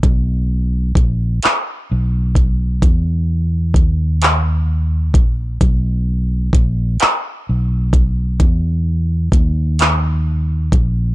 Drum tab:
HH |x-xx-x|x-xx-x|x-xx-x|x-xx-x|
CP |---x--|---x--|---x--|---x--|
BD |o-o--o|o-o--o|o-o--o|o-o--o|